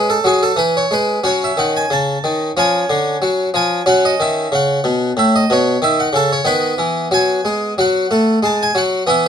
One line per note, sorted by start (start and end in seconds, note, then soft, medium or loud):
0.00 0.16 G#3 soft
0.00 1.19 C#4 soft
0.10 0.24 A4 medium
0.24 0.51 F#3 medium
0.24 0.41 G#4 medium
0.43 0.58 A4 medium
0.56 0.83 E3 soft
0.56 0.74 B4 medium
0.77 0.92 C#5 medium
0.91 1.17 G#3 soft
0.91 1.20 B4 medium
1.24 1.50 F#3 soft
1.24 2.52 C#4 soft
1.24 1.41 C#5 medium
1.44 1.59 E5 medium
1.57 1.83 D#3 soft
1.57 1.74 F#5 medium
1.77 1.91 G#5 medium
1.90 2.16 C#3 soft
1.90 2.47 A5 medium
2.24 2.50 D#3 soft
2.57 2.83 F3 medium
2.57 3.84 C#4 soft
2.57 3.42 G#5 medium
2.90 3.15 D3 medium
3.22 3.48 F#3 soft
3.54 3.80 F3 medium
3.54 3.83 G#5 medium
3.86 4.13 F#3 medium
3.86 6.41 C#4 soft
3.86 4.04 F#5 medium
4.05 4.21 D#5 medium
4.20 4.46 D#3 medium
4.20 4.54 E5 medium
4.52 4.78 C#3 medium
4.52 5.09 F#5 medium
4.84 5.10 B2 medium
5.17 5.43 A2 medium
5.17 5.34 E5 medium
5.36 5.51 D#5 medium
5.50 5.76 B2 medium
5.50 5.79 C#5 medium
5.82 6.07 D#3 medium
5.82 5.99 E5 medium
6.00 6.15 F#5 medium
6.13 6.39 C#3 soft
6.13 6.31 A4 medium
6.32 6.47 C#5 medium
6.45 6.72 D#3 medium
6.45 9.05 B3 soft
6.45 7.04 B4 medium
6.78 7.06 E3 medium
7.11 7.39 F#3 medium
7.11 7.80 G#5 loud
7.45 7.72 G#3 medium
7.78 8.05 F#3 medium
7.78 8.45 F#5 medium
8.11 8.37 A3 medium
8.43 8.69 G#3 medium
8.43 8.61 A5 medium
8.63 8.78 G#5 medium
8.75 9.01 F#3 medium
8.75 9.05 F#5 medium
9.07 9.28 E3 medium
9.07 9.28 B3 soft
9.07 9.25 E5 medium